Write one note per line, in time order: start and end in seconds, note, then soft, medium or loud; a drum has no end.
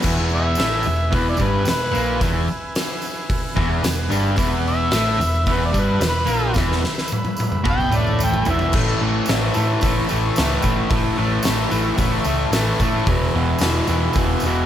0.02 0.55 E1 medium
0.02 0.57 E2 loud
0.02 0.57 E3 loud
0.02 4.34 B4 medium
0.02 3.55 E5 medium
0.02 4.12 G#5 medium
0.02 kick loud
0.02 crash loud
0.02 tambourine medium
0.29 tambourine soft
0.36 1.13 E5 loud
0.55 0.84 A1 medium
0.55 0.85 A2 medium
0.55 0.85 A3 medium
0.55 open hi-hat medium
0.55 tambourine medium
0.60 snare loud
0.83 1.11 E1 medium
0.83 1.08 E2 medium
0.83 tambourine medium
0.96 tambourine soft
1.11 1.38 E1 loud
1.11 1.37 E2 medium
1.11 1.39 E3 loud
1.11 kick loud
1.11 open hi-hat medium
1.15 1.26 B4 medium
1.29 1.45 D5 medium
1.37 1.66 G1 medium
1.37 1.65 G2 loud
1.37 1.66 G3 loud
1.37 kick medium
1.37 tambourine medium
1.44 1.68 B4 medium
1.65 1.93 E1 medium
1.65 1.88 E2 medium
1.65 snare loud
1.65 open hi-hat medium
1.65 tambourine medium
1.70 2.21 B4 loud
1.91 2.20 A#1 loud
1.91 2.19 A#2 medium
1.91 2.20 A#3 loud
1.91 tambourine medium
2.20 2.47 E1 medium
2.20 2.47 E2 medium
2.20 2.48 E3 medium
2.20 kick loud
2.20 open hi-hat medium
2.20 tambourine medium
2.48 tambourine soft
2.75 snare loud
2.75 open hi-hat medium
2.75 tambourine medium
3.02 tambourine medium
3.29 kick loud
3.29 open hi-hat medium
3.56 3.83 E1 medium
3.56 3.83 E2 loud
3.56 3.83 E3 loud
3.56 3.82 E5 medium
3.56 kick loud
3.83 4.09 E1 medium
3.83 4.06 E2 medium
3.83 4.10 F#5 medium
3.83 snare loud
3.83 open hi-hat medium
3.83 tambourine loud
3.99 tambourine soft
4.09 4.36 G1 loud
4.09 4.36 G2 medium
4.09 4.37 G3 medium
4.09 tambourine medium
4.13 4.38 G#5 medium
4.35 4.89 E1 loud
4.35 4.91 E2 medium
4.35 4.92 E3 loud
4.35 8.68 B4 medium
4.35 8.69 E5 medium
4.35 8.70 B5 medium
4.35 kick loud
4.35 open hi-hat medium
4.35 tambourine medium
4.67 5.54 E5 loud
4.67 tambourine soft
4.91 5.18 A1 medium
4.91 5.19 A2 medium
4.91 5.19 A3 loud
4.91 snare loud
4.91 open hi-hat medium
4.91 tambourine loud
5.18 5.45 E1 medium
5.18 5.41 E2 medium
5.18 tambourine medium
5.46 5.72 E1 loud
5.46 5.71 E2 loud
5.46 5.72 E3 loud
5.46 kick loud
5.46 open hi-hat medium
5.53 5.63 B4 medium
5.66 5.81 D5 medium
5.72 5.99 G1 medium
5.72 6.00 G2 medium
5.72 6.00 G3 loud
5.72 kick loud
5.72 tambourine medium
5.79 6.04 B4 loud
6.00 6.26 E1 medium
6.00 6.23 E2 medium
6.00 snare loud
6.00 open hi-hat medium
6.00 tambourine loud
6.09 6.58 B4 loud
6.15 tambourine soft
6.26 6.53 A#1 medium
6.26 6.54 A#2 medium
6.26 6.54 A#3 loud
6.26 tambourine medium
6.53 6.82 E1 loud
6.53 6.81 E2 loud
6.53 6.81 E3 loud
6.53 kick loud
6.53 snare medium
6.53 tambourine medium
6.72 snare medium
6.81 snare medium
6.81 tambourine soft
6.95 snare medium
6.95 tambourine soft
7.08 tambourine loud
7.12 high tom medium
7.25 high tom medium
7.25 tambourine soft
7.37 high tom medium
7.37 tambourine medium
7.52 mid tom medium
7.52 tambourine soft
7.64 7.90 B1 loud
7.64 7.91 B2 medium
7.64 7.91 B3 loud
7.64 kick loud
7.64 mid tom medium
7.64 tambourine soft
7.70 7.97 G5 loud
7.78 mid tom medium
7.78 tambourine soft
7.91 8.42 A1 medium
7.91 8.45 A2 medium
7.91 8.45 A3 loud
7.91 mid tom medium
7.91 tambourine medium
7.96 8.20 D5 loud
8.05 mid tom medium
8.05 tambourine soft
8.19 mid tom medium
8.19 tambourine loud
8.24 8.48 G5 medium
8.34 floor tom medium
8.34 tambourine soft
8.45 8.71 E1 loud
8.45 8.73 E2 medium
8.45 8.73 E3 loud
8.45 floor tom loud
8.45 tambourine medium
8.51 8.75 E5 medium
8.59 floor tom loud
8.59 tambourine soft
8.71 8.92 A1 loud
8.71 9.01 A2 medium
8.71 9.02 E3 loud
8.71 13.02 A4 medium
8.71 13.02 C#5 medium
8.71 13.03 E5 medium
8.71 kick loud
8.71 crash loud
8.71 tambourine soft
8.75 9.02 A3 loud
9.01 9.19 A1 loud
9.01 9.28 A2 loud
9.01 9.28 E3 loud
9.01 9.28 A3 loud
9.26 9.47 A1 medium
9.26 9.54 A2 medium
9.26 9.55 E3 medium
9.26 9.56 A3 medium
9.26 snare loud
9.26 open hi-hat medium
9.26 tambourine medium
9.54 9.81 A2 medium
9.54 9.74 A2 medium
9.54 9.81 E3 medium
9.54 9.82 A3 medium
9.54 tambourine medium
9.81 10.01 A1 medium
9.81 10.07 A2 loud
9.81 10.10 E3 loud
9.81 10.08 A3 loud
9.81 kick loud
9.81 open hi-hat medium
9.81 tambourine medium
10.09 10.29 A1 medium
10.09 10.36 A2 medium
10.09 10.37 E3 medium
10.09 10.37 A3 loud
10.09 tambourine medium
10.36 10.56 C#2 medium
10.36 10.60 A2 medium
10.36 10.61 E3 medium
10.36 10.60 A3 medium
10.36 snare loud
10.36 open hi-hat medium
10.36 tambourine loud
10.61 10.82 A1 medium
10.61 10.88 A2 medium
10.61 10.89 E3 medium
10.61 10.89 A3 loud
10.61 kick medium
10.61 tambourine medium
10.89 11.09 A1 medium
10.89 11.16 A2 medium
10.89 11.17 E3 loud
10.89 11.17 A3 loud
10.89 kick loud
10.89 open hi-hat medium
10.89 tambourine soft
11.17 11.37 A1 medium
11.17 11.43 A2 medium
11.17 11.44 E3 medium
11.17 11.44 A3 loud
11.43 11.69 A2 medium
11.43 11.70 E3 medium
11.43 11.71 A3 medium
11.43 snare loud
11.43 open hi-hat medium
11.43 tambourine loud
11.47 11.65 A1 medium
11.70 11.90 A1 medium
11.70 11.95 A2 medium
11.70 11.97 E3 loud
11.70 11.97 A3 loud
11.70 tambourine medium
11.96 12.17 A1 loud
11.96 12.23 A2 loud
11.96 12.24 E3 loud
11.96 12.25 A3 loud
11.96 kick loud
11.96 open hi-hat medium
11.96 tambourine medium
12.24 12.44 C#2 medium
12.24 12.51 A2 medium
12.24 12.53 E3 loud
12.24 12.53 A3 loud
12.24 tambourine medium
12.51 12.70 A1 medium
12.51 12.81 A2 medium
12.51 12.81 E3 medium
12.51 12.81 A3 medium
12.51 snare loud
12.51 open hi-hat medium
12.51 tambourine loud
12.80 12.98 A2 medium
12.80 13.07 A2 medium
12.80 13.10 E3 medium
12.80 13.07 A3 medium
12.80 kick medium
12.80 tambourine medium
13.04 13.25 E1 medium
13.04 14.66 G#4 medium
13.04 14.66 B4 medium
13.04 14.66 E5 medium
13.04 kick loud
13.04 open hi-hat medium
13.04 tambourine soft
13.09 13.35 E2 medium
13.09 13.34 B2 loud
13.09 13.35 E3 loud
13.34 13.53 E1 loud
13.34 13.61 E2 medium
13.34 13.61 B2 medium
13.34 13.62 E3 loud
13.58 13.79 E1 medium
13.58 13.87 E2 medium
13.58 13.87 B2 medium
13.58 13.88 E3 medium
13.58 snare loud
13.58 open hi-hat medium
13.58 tambourine medium
13.87 14.15 E2 medium
13.87 14.07 E2 loud
13.87 14.15 B2 medium
13.87 14.16 E3 medium
13.87 tambourine medium
14.13 14.34 E1 loud
14.13 14.44 E2 loud
14.13 14.44 B2 loud
14.13 14.46 E3 loud
14.13 kick loud
14.13 open hi-hat medium
14.13 tambourine medium
14.40 14.61 E1 medium
14.40 tambourine medium
14.45 14.66 E2 medium
14.45 14.66 B2 medium
14.45 14.66 E3 loud